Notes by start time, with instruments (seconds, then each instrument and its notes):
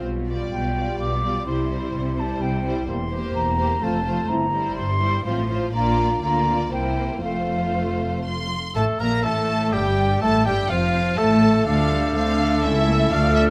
Already playing: french horn section F4
0.04 double bass section B1, cello section B2, french horn section G3
0.28 viola section G3, violin section F4 D5
0.52 double bass section B1, cello section B2, flute G5
0.75 viola section G3, violin section F4 D5
0.99 double bass section B1, cello section B2, flute D6
1.23 viola section G3, violin section F4 D5
1.46 double bass section C2, cello section C3, viola section G3, french horn section E4, violin section E4 C5, flute C6
1.70 viola section G3, violin section E4 C5
1.94 double bass section C2, cello section C3
2.17 viola section G3, violin section E4 C5, flute A5
2.41 double bass section C2, cello section C3, flute G5
2.64 viola section G3, violin section E4 C5
2.88 double bass section E1, cello section E2, french horn section A#3 G4, flute C6
3.11 viola section A#3, violin section G4 C5
3.35 double bass section E1, cello section E2, flute A#5
3.58 viola section A#3, violin section G4 C5
3.81 double bass section F1, cello section F2, viola section A3, french horn section C4 F4, violin section F4 C5, flute A5
4.04 viola section A3, violin section F4 C5
4.28 double bass section G1, cello section G2, french horn section C4 E4, flute A#5
4.52 viola section G3, violin section E4 C5
4.76 double bass section G1, cello section G2, flute C6
5.01 viola section G3, violin section E4 C5
5.25 double bass section A1, cello section A2, viola section F3, french horn section C4 F4, violin section F4 C5, flute C6
5.49 viola section F3, violin section F4 C5
5.74 double bass section A#1, cello section A#2, viola section A#3, french horn section D4 F4, violin section F4 D5, flute A#5
6.22 double bass section D2, cello section D3, viola section A#3, french horn section D4 F4, violin section F4 D5, flute A#5
6.46 french horn section C4
6.71 double bass section C2, cello section C3, french horn section A#3 E4, viola section A#3, violin section E4 C5, flute G5
7.22 double bass section F1, cello section F2, viola section A3, french horn section A3 F4, violin section F4 C5, flute F5
8.25 violin section C6
8.75 double bass section A1, cello section A2, bassoon A3, viola section A3, french horn section A3, violin section A4 A5, oboe A4, clarinet A4, flute A5
8.98 double bass section A#1, cello section A#2, bassoon A#3, viola section A#3, french horn section A#3, oboe A#4, violin section A#4 A#5, clarinet A#4, flute A#5
9.23 double bass section A1, cello section A2, french horn section A3, bassoon A3, viola section A3, oboe A4, violin section A4 A5, clarinet A4, flute A5
9.72 double bass section G1, cello section G2, french horn section G3, bassoon G3, viola section G3, oboe G4, violin section G4 G5, clarinet G4, flute G5
10.21 double bass section A1, cello section A2, french horn section A3, bassoon A3, viola section A3, oboe A4, clarinet A4, violin section A4 A5, flute A5
10.46 double bass section G1, cello section G2, bassoon G3, french horn section G3, viola section G3, oboe G4, clarinet G4, violin section G4 G5, flute G5
10.70 double bass section F1, cello section F2, bassoon F3, viola section F3, french horn section F3, oboe F4, clarinet F4, violin section F4 F5, flute F5
11.17 double bass section A1, cello section A2, viola section A3, bassoon A3, french horn section A3, clarinet A4, oboe A4, violin section A4 A5, flute A5
11.66 double bass section D2, cello section D2, french horn section A3 A4, viola section A3 D4, bassoon A3, clarinet D4, violin section F4 A4 F5, oboe A4, flute D6
11.91 viola section G3
12.15 double bass section D2, cello section D3, viola section A3 C4, violin section A4 F5
12.39 viola section D4
12.63 double bass section C#2, cello section C#2, viola section A3 E4, clarinet C#4, violin section E5, flute E6
12.87 viola section A#3
13.11 cello section D2, double bass section D2, viola section A3 D4, clarinet D4, french horn section F4, violin section A4 D5 F5, flute F6
13.35 violin section E5